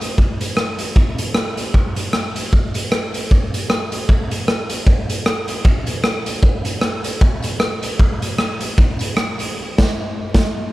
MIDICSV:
0, 0, Header, 1, 2, 480
1, 0, Start_track
1, 0, Tempo, 390625
1, 226, Time_signature, 4, 2, 24, 8
1, 13180, End_track
2, 0, Start_track
2, 0, Title_t, "Drums"
2, 15, Note_on_c, 9, 54, 80
2, 23, Note_on_c, 9, 42, 88
2, 138, Note_off_c, 9, 54, 0
2, 146, Note_off_c, 9, 42, 0
2, 223, Note_on_c, 9, 36, 101
2, 346, Note_off_c, 9, 36, 0
2, 501, Note_on_c, 9, 42, 102
2, 511, Note_on_c, 9, 54, 72
2, 624, Note_off_c, 9, 42, 0
2, 634, Note_off_c, 9, 54, 0
2, 697, Note_on_c, 9, 37, 108
2, 820, Note_off_c, 9, 37, 0
2, 965, Note_on_c, 9, 42, 84
2, 988, Note_on_c, 9, 54, 82
2, 1088, Note_off_c, 9, 42, 0
2, 1111, Note_off_c, 9, 54, 0
2, 1179, Note_on_c, 9, 36, 114
2, 1301, Note_off_c, 9, 36, 0
2, 1455, Note_on_c, 9, 42, 102
2, 1459, Note_on_c, 9, 54, 78
2, 1577, Note_off_c, 9, 42, 0
2, 1582, Note_off_c, 9, 54, 0
2, 1652, Note_on_c, 9, 37, 111
2, 1775, Note_off_c, 9, 37, 0
2, 1933, Note_on_c, 9, 42, 89
2, 1938, Note_on_c, 9, 54, 87
2, 2056, Note_off_c, 9, 42, 0
2, 2061, Note_off_c, 9, 54, 0
2, 2141, Note_on_c, 9, 36, 102
2, 2263, Note_off_c, 9, 36, 0
2, 2414, Note_on_c, 9, 42, 96
2, 2422, Note_on_c, 9, 54, 76
2, 2537, Note_off_c, 9, 42, 0
2, 2545, Note_off_c, 9, 54, 0
2, 2619, Note_on_c, 9, 37, 113
2, 2742, Note_off_c, 9, 37, 0
2, 2898, Note_on_c, 9, 42, 86
2, 2901, Note_on_c, 9, 54, 81
2, 3021, Note_off_c, 9, 42, 0
2, 3024, Note_off_c, 9, 54, 0
2, 3106, Note_on_c, 9, 36, 114
2, 3229, Note_off_c, 9, 36, 0
2, 3370, Note_on_c, 9, 54, 83
2, 3378, Note_on_c, 9, 42, 105
2, 3493, Note_off_c, 9, 54, 0
2, 3501, Note_off_c, 9, 42, 0
2, 3585, Note_on_c, 9, 37, 112
2, 3708, Note_off_c, 9, 37, 0
2, 3859, Note_on_c, 9, 54, 89
2, 3865, Note_on_c, 9, 42, 89
2, 3982, Note_off_c, 9, 54, 0
2, 3988, Note_off_c, 9, 42, 0
2, 4069, Note_on_c, 9, 36, 108
2, 4191, Note_off_c, 9, 36, 0
2, 4349, Note_on_c, 9, 42, 99
2, 4350, Note_on_c, 9, 54, 73
2, 4472, Note_off_c, 9, 42, 0
2, 4473, Note_off_c, 9, 54, 0
2, 4544, Note_on_c, 9, 37, 111
2, 4667, Note_off_c, 9, 37, 0
2, 4817, Note_on_c, 9, 54, 81
2, 4819, Note_on_c, 9, 42, 85
2, 4940, Note_off_c, 9, 54, 0
2, 4942, Note_off_c, 9, 42, 0
2, 5026, Note_on_c, 9, 36, 119
2, 5148, Note_off_c, 9, 36, 0
2, 5300, Note_on_c, 9, 42, 104
2, 5302, Note_on_c, 9, 54, 78
2, 5423, Note_off_c, 9, 42, 0
2, 5425, Note_off_c, 9, 54, 0
2, 5506, Note_on_c, 9, 37, 114
2, 5629, Note_off_c, 9, 37, 0
2, 5771, Note_on_c, 9, 42, 88
2, 5771, Note_on_c, 9, 54, 84
2, 5893, Note_off_c, 9, 42, 0
2, 5893, Note_off_c, 9, 54, 0
2, 5978, Note_on_c, 9, 36, 109
2, 6101, Note_off_c, 9, 36, 0
2, 6260, Note_on_c, 9, 54, 74
2, 6263, Note_on_c, 9, 42, 102
2, 6383, Note_off_c, 9, 54, 0
2, 6386, Note_off_c, 9, 42, 0
2, 6463, Note_on_c, 9, 37, 111
2, 6586, Note_off_c, 9, 37, 0
2, 6732, Note_on_c, 9, 42, 86
2, 6745, Note_on_c, 9, 54, 82
2, 6855, Note_off_c, 9, 42, 0
2, 6867, Note_off_c, 9, 54, 0
2, 6941, Note_on_c, 9, 36, 121
2, 7064, Note_off_c, 9, 36, 0
2, 7207, Note_on_c, 9, 54, 74
2, 7211, Note_on_c, 9, 42, 102
2, 7329, Note_off_c, 9, 54, 0
2, 7334, Note_off_c, 9, 42, 0
2, 7418, Note_on_c, 9, 37, 115
2, 7541, Note_off_c, 9, 37, 0
2, 7695, Note_on_c, 9, 42, 91
2, 7696, Note_on_c, 9, 54, 82
2, 7818, Note_off_c, 9, 42, 0
2, 7819, Note_off_c, 9, 54, 0
2, 7897, Note_on_c, 9, 36, 112
2, 8019, Note_off_c, 9, 36, 0
2, 8170, Note_on_c, 9, 42, 91
2, 8194, Note_on_c, 9, 54, 77
2, 8292, Note_off_c, 9, 42, 0
2, 8317, Note_off_c, 9, 54, 0
2, 8373, Note_on_c, 9, 37, 105
2, 8496, Note_off_c, 9, 37, 0
2, 8653, Note_on_c, 9, 42, 92
2, 8657, Note_on_c, 9, 54, 85
2, 8776, Note_off_c, 9, 42, 0
2, 8780, Note_off_c, 9, 54, 0
2, 8863, Note_on_c, 9, 36, 123
2, 8986, Note_off_c, 9, 36, 0
2, 9124, Note_on_c, 9, 54, 80
2, 9139, Note_on_c, 9, 42, 106
2, 9247, Note_off_c, 9, 54, 0
2, 9262, Note_off_c, 9, 42, 0
2, 9338, Note_on_c, 9, 37, 114
2, 9460, Note_off_c, 9, 37, 0
2, 9616, Note_on_c, 9, 54, 80
2, 9621, Note_on_c, 9, 42, 94
2, 9739, Note_off_c, 9, 54, 0
2, 9744, Note_off_c, 9, 42, 0
2, 9824, Note_on_c, 9, 36, 113
2, 9947, Note_off_c, 9, 36, 0
2, 10103, Note_on_c, 9, 42, 99
2, 10112, Note_on_c, 9, 54, 74
2, 10226, Note_off_c, 9, 42, 0
2, 10235, Note_off_c, 9, 54, 0
2, 10303, Note_on_c, 9, 37, 113
2, 10426, Note_off_c, 9, 37, 0
2, 10574, Note_on_c, 9, 42, 89
2, 10587, Note_on_c, 9, 54, 80
2, 10697, Note_off_c, 9, 42, 0
2, 10710, Note_off_c, 9, 54, 0
2, 10788, Note_on_c, 9, 36, 120
2, 10911, Note_off_c, 9, 36, 0
2, 11049, Note_on_c, 9, 54, 76
2, 11067, Note_on_c, 9, 42, 98
2, 11172, Note_off_c, 9, 54, 0
2, 11190, Note_off_c, 9, 42, 0
2, 11264, Note_on_c, 9, 37, 114
2, 11387, Note_off_c, 9, 37, 0
2, 11538, Note_on_c, 9, 54, 87
2, 11549, Note_on_c, 9, 42, 88
2, 11661, Note_off_c, 9, 54, 0
2, 11672, Note_off_c, 9, 42, 0
2, 12022, Note_on_c, 9, 38, 111
2, 12022, Note_on_c, 9, 49, 89
2, 12025, Note_on_c, 9, 36, 112
2, 12145, Note_off_c, 9, 38, 0
2, 12145, Note_off_c, 9, 49, 0
2, 12148, Note_off_c, 9, 36, 0
2, 12711, Note_on_c, 9, 38, 105
2, 12712, Note_on_c, 9, 36, 106
2, 12834, Note_off_c, 9, 38, 0
2, 12835, Note_off_c, 9, 36, 0
2, 13180, End_track
0, 0, End_of_file